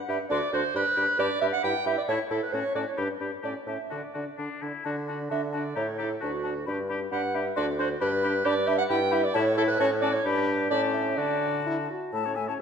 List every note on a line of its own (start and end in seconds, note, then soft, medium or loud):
0.08 0.19 G2 medium
0.08 0.18 D4 medium
0.08 0.19 G4 medium
0.08 0.19 E5 medium
0.08 0.16 B5 medium
0.30 0.41 D2 loud
0.30 0.40 D4 medium
0.30 0.41 F#4 medium
0.30 0.52 D5 loud
0.30 0.38 C6 medium
0.53 0.63 D2 loud
0.53 0.63 D4 medium
0.53 0.63 F#4 medium
0.53 0.75 C5 loud
0.53 0.61 C6 medium
0.74 0.84 G2 loud
0.74 0.85 D4 medium
0.74 0.85 G4 medium
0.74 1.19 B4 loud
0.74 0.82 B5 medium
0.96 1.07 G2 medium
0.96 1.07 D4 medium
0.96 1.06 G4 medium
0.96 1.04 B5 medium
1.19 1.29 G2 loud
1.19 1.30 D4 medium
1.19 1.29 G4 loud
1.19 1.41 D5 loud
1.19 1.26 B5 medium
1.41 1.52 G2 medium
1.41 1.52 D4 medium
1.41 1.52 G4 medium
1.41 1.46 E5 loud
1.41 1.49 B5 medium
1.53 1.63 F#5 loud
1.62 1.74 G2 loud
1.62 1.74 E4 medium
1.62 1.73 G4 medium
1.62 1.86 G5 loud
1.62 1.69 B5 medium
1.86 1.96 G2 medium
1.86 1.97 E4 medium
1.86 1.96 G4 medium
1.86 1.97 E5 loud
1.86 1.92 B5 medium
1.98 2.03 D5 loud
2.08 2.18 A2 loud
2.08 2.19 E4 medium
2.08 2.19 C#5 loud
2.08 2.14 A5 medium
2.30 2.41 A2 medium
2.30 2.41 E4 medium
2.30 2.42 A4 loud
2.30 2.36 A5 medium
2.43 2.54 B4 loud
2.53 2.63 A2 medium
2.53 2.64 C#4 medium
2.53 2.64 F#4 medium
2.53 2.75 C#5 loud
2.53 2.59 A5 medium
2.75 2.85 A2 medium
2.75 2.85 C#4 medium
2.75 2.85 F#4 medium
2.75 2.81 D5 loud
2.75 2.82 A5 medium
2.88 2.98 C#5 medium
2.97 3.08 G2 medium
2.97 3.08 D4 medium
2.97 3.08 G4 medium
2.97 3.03 B5 medium
3.20 3.31 G2 medium
3.20 3.31 D4 medium
3.20 3.31 G4 medium
3.20 3.26 B5 medium
3.42 3.54 A2 medium
3.42 3.55 C#4 medium
3.42 3.53 G4 medium
3.42 3.55 D5 medium
3.42 3.49 A5 medium
3.66 3.77 A2 medium
3.66 3.79 C#4 medium
3.66 3.78 G4 medium
3.66 3.93 E5 medium
3.66 3.73 A5 medium
3.90 4.02 D3 medium
3.90 4.02 D4 medium
3.90 4.01 F#4 medium
3.90 4.39 D5 medium
3.90 3.96 A5 medium
4.13 4.26 D3 medium
4.13 4.26 D4 medium
4.13 4.25 F#4 medium
4.13 4.19 A5 soft
4.37 4.49 D3 medium
4.37 4.64 D4 medium
4.37 4.50 D4 medium
4.37 4.44 A5 medium
4.62 4.73 D3 medium
4.62 4.73 D4 medium
4.62 4.84 E4 medium
4.62 4.68 A5 medium
4.84 5.26 D3 medium
4.84 4.96 D4 medium
4.84 4.95 F#4 medium
4.84 4.90 A5 medium
5.07 5.19 D4 medium
5.07 5.19 F#4 medium
5.07 5.13 A5 medium
5.29 5.71 D3 medium
5.29 5.42 D4 medium
5.29 5.41 F#4 medium
5.29 5.42 E5 loud
5.29 5.35 A5 medium
5.53 5.65 D4 medium
5.53 5.64 F#4 medium
5.53 5.79 D5 medium
5.53 5.58 A5 medium
5.76 6.17 A2 medium
5.76 5.87 E4 medium
5.76 5.86 G4 medium
5.76 5.99 C#5 loud
5.76 5.82 A#5 medium
5.98 6.10 E4 medium
5.98 6.09 G4 medium
5.98 6.10 A4 medium
5.98 6.04 A#5 medium
6.21 6.62 D2 medium
6.21 6.33 D4 medium
6.21 6.31 F#4 medium
6.21 6.66 F#4 medium
6.21 6.27 A5 medium
6.44 6.55 D4 medium
6.44 6.54 F#4 medium
6.44 6.50 A5 medium
6.66 7.07 G2 medium
6.66 6.78 D4 medium
6.66 6.78 G4 medium
6.66 6.72 B5 medium
6.89 7.00 D4 medium
6.89 7.00 G4 medium
6.89 6.95 B5 medium
7.12 7.52 G2 medium
7.12 7.22 D4 medium
7.12 7.22 G4 medium
7.12 7.36 F#5 loud
7.12 7.18 B5 medium
7.34 7.45 D4 medium
7.34 7.45 G4 medium
7.34 7.56 E5 loud
7.34 7.40 B5 medium
7.56 7.96 D2 loud
7.56 7.67 D4 loud
7.56 7.67 F#4 medium
7.56 7.67 D5 loud
7.56 7.62 C6 medium
7.78 7.89 D4 medium
7.78 7.90 F#4 medium
7.78 7.89 C5 loud
7.78 7.84 C6 medium
8.01 8.41 G2 loud
8.01 8.11 D4 medium
8.01 8.11 G4 medium
8.01 8.47 B4 loud
8.01 8.07 B5 medium
8.22 8.35 D4 medium
8.22 8.33 G4 medium
8.22 8.28 B5 medium
8.45 8.85 G2 loud
8.45 8.56 D4 loud
8.45 8.55 G4 loud
8.45 8.69 D5 loud
8.45 8.51 B5 loud
8.66 8.78 D4 medium
8.66 8.77 G4 medium
8.66 8.78 E5 loud
8.66 8.74 B5 medium
8.79 8.84 F#5 loud
8.89 9.30 G2 loud
8.89 9.00 E4 loud
8.89 8.99 G4 medium
8.89 9.14 G5 loud
8.89 8.96 B5 medium
9.11 9.22 E4 medium
9.11 9.22 G4 loud
9.11 9.26 E5 loud
9.11 9.17 B5 loud
9.24 9.37 D5 loud
9.34 9.75 A2 loud
9.34 9.45 E4 loud
9.34 9.57 C#5 loud
9.34 9.40 A5 loud
9.57 9.67 E4 loud
9.57 9.68 E4 loud
9.57 9.63 A4 loud
9.57 9.63 A5 medium
9.68 9.79 B4 loud
9.80 10.20 A2 loud
9.80 9.90 C#4 loud
9.80 9.90 F#4 loud
9.80 9.90 C#5 loud
9.80 9.86 A5 loud
10.01 10.12 C#4 loud
10.01 10.12 F#4 loud
10.01 10.15 D5 loud
10.01 10.09 A5 loud
10.13 10.25 C#5 loud
10.24 10.68 G2 loud
10.24 10.73 D4 loud
10.24 10.68 G4 loud
10.24 10.50 B5 loud
10.70 11.17 A2 loud
10.70 11.20 C#4 medium
10.70 11.19 G4 loud
10.70 10.81 D5 loud
10.70 11.17 A5 loud
10.93 11.18 E5 loud
11.17 11.88 D3 medium
11.17 11.61 D4 medium
11.17 11.89 F#4 loud
11.17 11.65 D5 loud
11.17 11.88 A5 medium
11.66 11.77 E4 loud
11.90 12.13 F#4 medium
12.13 12.54 A2 medium
12.13 12.28 A3 medium
12.13 12.25 E4 medium
12.13 12.27 E5 medium
12.13 12.35 A5 medium
12.24 12.39 C#4 medium
12.24 12.38 A4 medium
12.24 12.37 C#5 medium
12.35 12.51 A3 medium
12.35 12.50 E4 medium
12.35 12.50 E5 medium
12.35 12.47 G#5 medium
12.48 12.60 C#4 medium
12.48 12.59 A4 medium
12.48 12.59 C#5 medium
12.48 12.54 A5 medium